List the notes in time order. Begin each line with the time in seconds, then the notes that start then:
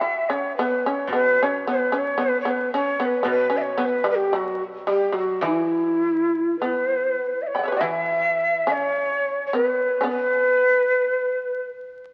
0.00 E4 E5
0.29 C#4 C#5
0.57 B3 B4
0.86 C#4 C#5
1.07 B2
1.13 B3 B4
1.43 C#4 C#5
1.67 B3 B4
1.92 C#4
1.98 C#5
2.18 B3
2.22 B4
2.41 C#5
2.45 B3
2.51 B4
2.74 C#4 C#5
3.00 B3 C#5
3.05 B4
3.23 B2 B3
3.30 B4
3.50 C#4
3.57 E5
3.62 C#5
3.78 B3
3.85 B4
4.04 G3
4.11 B4
4.15 G4
4.33 F#3 F#4
4.87 G3 G4
5.12 F#3
5.18 F#4
5.41 E3
5.45 E4
6.59 B3 B4
7.42 E5
7.47 C#5
7.55 G5 B5
7.59 F#5
7.63 C#5 E5
7.68 B4
7.72 G4
7.77 E3 F#4
7.81 E4 E5
8.67 C#4
8.72 C#5
9.47 C#5
9.53 B3 B4
10.01 B3 C#4
10.08 B4